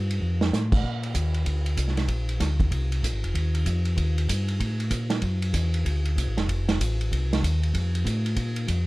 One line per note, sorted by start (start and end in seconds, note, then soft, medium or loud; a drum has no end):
0.00 0.20 G2 medium
0.11 ride soft
0.22 0.52 F2 medium
0.41 snare medium
0.53 0.83 A2 medium
0.53 snare medium
0.53 hi-hat pedal medium
0.72 kick medium
0.72 crash medium
0.84 1.14 A#2 medium
0.84 kick soft
1.03 ride soft
1.15 1.45 D#2 medium
1.15 kick soft
1.15 hi-hat pedal medium
1.15 ride medium
1.34 ride soft
1.45 1.77 D2 medium
1.45 kick soft
1.45 ride medium
1.66 ride soft
1.77 2.08 C2 medium
1.77 kick soft
1.77 hi-hat pedal medium
1.77 ride medium
1.88 snare soft
1.97 snare soft
1.97 ride soft
2.08 2.39 A#1 medium
2.08 kick soft
2.08 ride medium
2.29 ride soft
2.40 2.71 D2 medium
2.40 kick soft
2.40 snare soft
2.40 hi-hat pedal soft
2.40 ride medium
2.60 kick medium
2.60 ride soft
2.71 3.02 C2 medium
2.71 kick soft
2.71 ride medium
2.92 ride soft
3.03 3.14 A#1 medium
3.03 kick soft
3.03 hi-hat pedal medium
3.03 ride medium
3.13 3.24 G#1 medium
3.24 3.34 F1 medium
3.24 ride soft
3.34 3.65 D#2 medium
3.34 kick soft
3.34 ride medium
3.55 ride soft
3.66 3.97 F2 medium
3.66 kick soft
3.66 hi-hat pedal medium
3.66 ride medium
3.85 ride soft
3.97 4.28 D#2 medium
3.97 kick soft
3.97 ride medium
4.18 ride medium
4.29 4.60 G2 medium
4.29 kick soft
4.29 hi-hat pedal medium
4.29 ride medium
4.48 ride soft
4.60 4.91 A2 medium
4.60 kick soft
4.60 ride medium
4.80 ride soft
4.91 5.22 A#2 medium
4.91 kick soft
4.91 hi-hat pedal medium
4.91 ride medium
5.10 snare medium
5.10 ride soft
5.22 5.53 F#2 medium
5.22 kick soft
5.22 ride medium
5.42 ride medium
5.54 5.85 E2 medium
5.54 kick soft
5.54 hi-hat pedal medium
5.54 ride medium
5.74 ride soft
5.85 6.16 D2 medium
5.85 kick soft
5.85 ride medium
6.05 ride soft
6.16 6.27 C2 medium
6.16 kick soft
6.16 hi-hat pedal medium
6.16 ride medium
6.27 6.38 A1 medium
6.37 6.47 F1 medium
6.37 snare soft
6.37 ride soft
6.48 6.79 F1 medium
6.48 kick soft
6.48 ride medium
6.69 snare medium
6.69 ride soft
6.79 7.10 A1 loud
6.79 kick soft
6.79 hi-hat pedal medium
6.79 ride medium
7.01 ride soft
7.12 7.42 C2 medium
7.12 kick soft
7.12 ride medium
7.33 snare medium
7.33 ride soft
7.42 7.73 D#2 loud
7.42 kick soft
7.42 hi-hat pedal medium
7.42 ride medium
7.63 ride soft
7.74 8.05 F2 medium
7.74 kick soft
7.74 ride medium
7.95 ride soft
8.05 8.36 A2 loud
8.05 kick soft
8.05 hi-hat pedal medium
8.05 ride medium
8.26 ride soft
8.36 8.67 A#2 medium
8.36 kick soft
8.36 ride medium
8.56 ride soft
8.68 8.87 F2 medium
8.68 kick soft
8.68 hi-hat pedal medium
8.68 ride medium